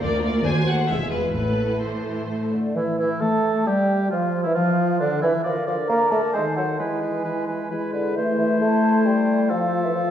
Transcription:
0.00 double bass section D2, cello section D2, viola section A#3 F4, violin section A#4 D5
0.23 violin section D5
0.43 double bass section D#2, cello section D#2, viola section A3 F#4, violin section C5 G#5
0.67 violin section F#5
0.89 double bass section E1, cello section E2, viola section G#3 F4, violin section G#4 E5
1.11 violin section B4
1.35 double bass section A1, cello section A2, viola section A3 E4, violin section A4 B4
1.82 viola section E3, violin section C5
2.05 viola section E3
2.30 viola section A3
2.52 bassoon D3, flute D5
2.75 bassoon E3, french horn section E3, clarinet E3, oboe E4, flute E5
2.98 french horn section E3, clarinet E3, bassoon E3, oboe E4, flute E5
3.21 bassoon A3, clarinet A3, french horn section A3, oboe A4, flute A5
3.66 bassoon G3, french horn section G3, clarinet G3, oboe G4, flute G5
4.10 french horn section F3, clarinet F3, bassoon F3, oboe F4, flute F5
4.44 french horn section E3, clarinet E3, bassoon E3, oboe E4, flute E5
4.55 french horn section F3, clarinet F3, bassoon F3, oboe F4, flute F5
5.00 clarinet D3, french horn section D3, bassoon D3, oboe D4, flute D5
5.22 french horn section E3, bassoon E3, clarinet E3, oboe E4, flute E5
5.44 french horn section D3, bassoon F3, clarinet A#4, oboe D5, flute F5
5.67 bassoon F3, clarinet A#4, oboe D5, flute F5
5.89 bassoon A#3, clarinet A#4, oboe D5, flute A#5
6.11 bassoon A3, clarinet A#4, oboe D5, flute A5
6.33 french horn section D#3, bassoon G#3, clarinet A4, oboe C5, flute G#5
6.56 bassoon F#3, clarinet A4, oboe C5, flute F#5
6.79 french horn section E3, bassoon G#3, clarinet E4, oboe B4, flute G#5
7.01 clarinet E4, oboe B4
7.24 french horn section E3, clarinet E4, oboe B4
7.47 french horn section E3, clarinet E4, oboe B4
7.70 french horn section G#3, clarinet E4, oboe B4
7.93 bassoon D3, clarinet E4, oboe B4, flute D5
8.16 bassoon E3, french horn section A3, clarinet E4, oboe C5, flute E5
8.38 bassoon E3, flute E5
8.61 bassoon A3, flute A5
9.05 bassoon G3, flute G5
9.49 bassoon F3, french horn section F3, clarinet F4, oboe A4, flute F5
9.83 bassoon E3, flute E5
9.95 bassoon F3, flute F5

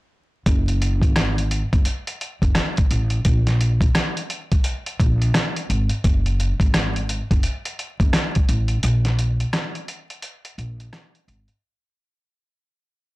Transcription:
0.46 upright bass F#1, kick, closed hi-hat
0.68 closed hi-hat
0.82 closed hi-hat
1.02 upright bass G#1, kick, closed hi-hat
1.16 cross-stick, snare, closed hi-hat
1.38 closed hi-hat
1.51 closed hi-hat
1.73 upright bass F#1, kick, closed hi-hat
1.85 closed hi-hat
2.07 closed hi-hat
2.21 closed hi-hat
2.42 upright bass F#1, kick, closed hi-hat
2.55 cross-stick, snare, closed hi-hat
2.77 kick, closed hi-hat
2.91 upright bass A1, closed hi-hat
3.10 closed hi-hat
3.25 upright bass A#1, kick, closed hi-hat
3.47 snare, closed hi-hat
3.61 closed hi-hat
3.81 kick, closed hi-hat
3.95 cross-stick, snare, closed hi-hat
4.17 closed hi-hat
4.30 closed hi-hat
4.52 kick, closed hi-hat
4.64 closed hi-hat
4.86 closed hi-hat
5.00 upright bass A#1, kick, closed hi-hat
5.22 closed hi-hat
5.34 cross-stick, snare, closed hi-hat
5.56 closed hi-hat
5.70 upright bass G#1, closed hi-hat
5.89 closed hi-hat
6.04 upright bass F#1, kick, closed hi-hat
6.26 closed hi-hat
6.40 closed hi-hat
6.60 upright bass G#1, kick, closed hi-hat
6.74 cross-stick, snare, closed hi-hat
6.96 closed hi-hat
7.09 closed hi-hat
7.31 upright bass F#1, kick, closed hi-hat
7.43 closed hi-hat
7.65 closed hi-hat
7.79 closed hi-hat
8.00 upright bass F#1, kick, closed hi-hat
8.13 cross-stick, snare, closed hi-hat
8.35 kick, closed hi-hat
8.49 upright bass A1, closed hi-hat
8.68 closed hi-hat
8.83 upright bass A#1, closed hi-hat
9.05 snare, closed hi-hat
9.19 closed hi-hat
9.40 closed hi-hat
9.53 cross-stick, snare, closed hi-hat
9.75 closed hi-hat
9.88 closed hi-hat
10.10 closed hi-hat
10.22 closed hi-hat
10.45 closed hi-hat
10.58 upright bass A#1, closed hi-hat
10.80 closed hi-hat
10.93 cross-stick, snare, closed hi-hat
11.15 closed hi-hat
11.28 upright bass G#1, closed hi-hat
11.48 closed hi-hat

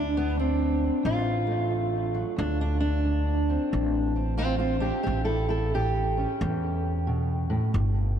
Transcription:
Already playing: steel-string acoustic guitar D2 D4, upright bass D2
0.17 steel-string acoustic guitar B3
0.37 steel-string acoustic guitar D2 C4
1.03 upright bass A1, steel-string acoustic guitar D2 F4
1.47 steel-string acoustic guitar A3
1.71 steel-string acoustic guitar D2
2.14 steel-string acoustic guitar F#3
2.36 steel-string acoustic guitar D2 D4, upright bass D2
2.61 steel-string acoustic guitar D4
2.80 steel-string acoustic guitar D4
3.05 steel-string acoustic guitar D2
3.50 steel-string acoustic guitar C4
3.72 upright bass A1, steel-string acoustic guitar D2
4.16 steel-string acoustic guitar C4
4.38 steel-string acoustic guitar D2 C4 F4
4.58 steel-string acoustic guitar C4 F4
4.80 steel-string acoustic guitar D4 G4
5.03 upright bass A1, steel-string acoustic guitar E4 G4
5.08 steel-string acoustic guitar A2
5.25 steel-string acoustic guitar E4 A4
5.49 steel-string acoustic guitar E4 A4
5.74 steel-string acoustic guitar A2 G4
6.17 steel-string acoustic guitar C#4
6.41 upright bass E2, steel-string acoustic guitar A2
7.07 steel-string acoustic guitar B2
7.50 steel-string acoustic guitar A2
7.74 upright bass G1, steel-string acoustic guitar G2

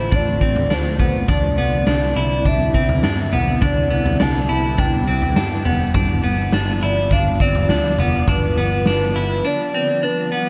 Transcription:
Already playing: ambient pad D3 F3 A3 C4 F4, clean electric guitar E4, soft synth lead C5
0.12 picked electric bass A1, clean electric guitar D4, soft synth lead D5, kick, floor tom
0.41 picked electric bass A1, clean electric guitar C4, kick
0.56 floor tom
0.70 picked electric bass D2, clean electric guitar D4, soft synth lead C5, snare
0.99 picked electric bass B1, clean electric guitar B3, kick, floor tom
1.28 picked electric bass C2, ambient pad G3 B3 E4, clean electric guitar D4, soft synth lead D5, kick, floor tom
1.58 picked electric bass C2, clean electric guitar B3
1.87 picked electric bass C2, clean electric guitar D4, snare
2.16 picked electric bass C2, clean electric guitar E4
2.45 picked electric bass C2, clean electric guitar D4, soft synth lead E5, kick, floor tom
2.74 picked electric bass C2, clean electric guitar C4, kick
2.89 floor tom
3.03 picked electric bass G2, clean electric guitar D4, snare
3.32 picked electric bass B1, clean electric guitar B3, floor tom
3.62 picked electric bass C2, clean electric guitar D4, soft synth lead D5, kick, floor tom
3.90 picked electric bass C2, clean electric guitar B3
4.06 floor tom
4.20 picked electric bass C2, clean electric guitar D4, soft synth lead A5, snare
4.49 picked electric bass C2, clean electric guitar E4
4.78 picked electric bass C2, clean electric guitar D4, soft synth lead G5, kick, floor tom
5.08 picked electric bass C2, clean electric guitar C4
5.22 floor tom
5.36 picked electric bass G2, clean electric guitar D4, snare
5.65 picked electric bass F1, clean electric guitar B3, floor tom
5.94 picked electric bass G1, ambient pad F3 F4, clean electric guitar D4, kick, floor tom
6.24 picked electric bass G1, clean electric guitar B3
6.52 picked electric bass G1, clean electric guitar D4, snare
6.82 picked electric bass G1, clean electric guitar E4, soft synth lead D5
7.11 picked electric bass G1, clean electric guitar D4, soft synth lead F5, kick, floor tom
7.40 picked electric bass G1, clean electric guitar C4, soft synth lead D5, kick
7.55 floor tom
7.69 picked electric bass D2, clean electric guitar D4, snare
7.98 picked electric bass F1, clean electric guitar B3, floor tom
8.28 picked electric bass G1, clean electric guitar D4, soft synth lead B4, kick, floor tom
8.57 picked electric bass G1, clean electric guitar B3
8.86 picked electric bass G1, clean electric guitar D4, snare
9.15 picked electric bass G1, clean electric guitar E4
9.45 clean electric guitar D4, soft synth lead D5
9.74 clean electric guitar C4
10.03 clean electric guitar D4, soft synth lead B4
10.32 clean electric guitar B3

